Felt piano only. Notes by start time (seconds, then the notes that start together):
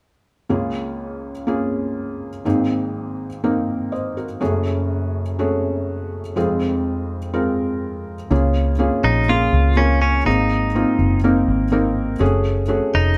0.49 C#2 C#3 A#3 C#4 F4 G#4
1.47 A#3 C#4 F4 G#4
2.45 G#1 G#2 A#3 C4 D#4 G#4
3.44 A#3 C4 D#4 A#4
3.92 C5 D#5
4.17 F#4 A#4
4.40 F#1 F#2 A3 C#4 F#4 G#4
5.39 A3 C#4 F#4 G#4
6.36 F1 F2 G#3 C4 F4 G#4
7.33 G#3 C4 F4 A#4
8.31 C#3 A#3 C#4 F4 G#4
8.79 A#3 C#4 F4 G#4
9.28 A#3 C#4 F4 G#4
9.76 A#3 C#4 F4 A#4
10.25 G#2 A#3 C4 D#4 G#4
10.75 A#3 C4 D#4 F4
11.24 A#3 C4 D#4 A#4
11.72 A#3 C4 D#4 A#4
12.19 A3 C#4 F#4 G#4
12.68 A3 C#4 F#4 G#4